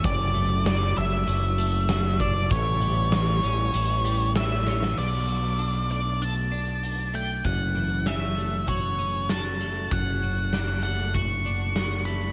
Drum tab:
CC |----------------|----------------|x---------------|----------------|
HH |x-x-x-x-x-x-x-x-|x-x-x-x-x-x-x---|--x-x-x-x-x-x-x-|x-x-x-x-x-x-x-x-|
SD |----o-------o---|----o-------o-oo|----------------|----o-------o---|
BD |o-------------o-|o---------------|----------------|o-------o-------|

CC |----------------|
HH |x-x-x-x-x-x-x-x-|
SD |----o-------o---|
BD |o-------o-------|